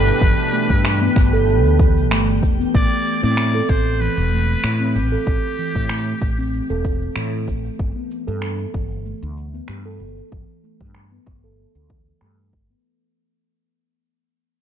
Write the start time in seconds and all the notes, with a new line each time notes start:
Already playing: B2 E3 G3 D4 G4 B4 G5
0.07 cabasa
0.21 G1 E3, kick, cabasa
0.39 cabasa
0.53 A3, cabasa
0.70 G2, kick, cabasa
0.85 finger snap, cabasa
1.01 B3, cabasa
1.16 G1, finger snap, kick, cabasa
1.33 A4, cabasa
1.49 cabasa
1.65 D2, cabasa
1.79 E3, kick, cabasa
1.98 cabasa
2.11 G1 A3, finger snap, cabasa
2.29 cabasa
2.43 E1, kick, cabasa
2.60 B3, cabasa
2.74 A1 A3 D5, kick, cabasa
3.06 cabasa
3.23 A2 C4 D5, cabasa
3.37 finger snap, cabasa
3.55 A4, cabasa
3.69 A1 C5, kick, cabasa
3.87 cabasa
4.00 E3 B4, cabasa
4.17 E1
4.32 A3, cabasa
4.50 cabasa
4.64 A2, finger snap, cabasa
4.81 C4
4.95 A1 G4, cabasa
5.12 A4, cabasa
5.27 A1, kick, cabasa
5.58 E3, cabasa
5.75 A2, kick, cabasa
5.89 A3, finger snap, cabasa
6.07 cabasa
6.21 A1, kick, cabasa
6.38 C4, cabasa
6.53 cabasa
6.70 E1 A4
6.85 kick, cabasa
7.02 cabasa
7.16 A2 E3, finger snap, cabasa
7.47 A1 A3, kick, cabasa
7.65 cabasa
7.79 G1, kick, cabasa
7.96 B3
8.11 cabasa
8.27 G2 A4, cabasa
8.42 finger snap, cabasa
8.59 cabasa
8.74 G1 E3, kick, cabasa
8.91 cabasa
9.05 A3, cabasa
9.23 D2
9.37 cabasa
9.54 B3, cabasa
9.68 G2, finger snap, cabasa
9.86 A4
10.00 G1, cabasa
10.17 cabasa
10.32 G1 E3, kick
10.64 A3, cabasa
10.81 G2, kick
10.95 finger snap
11.12 B3
11.26 G1, finger snap, kick
11.44 A4
11.75 D2
11.90 E3, kick
12.21 G2 A3, finger snap
12.53 G1, kick
12.70 B3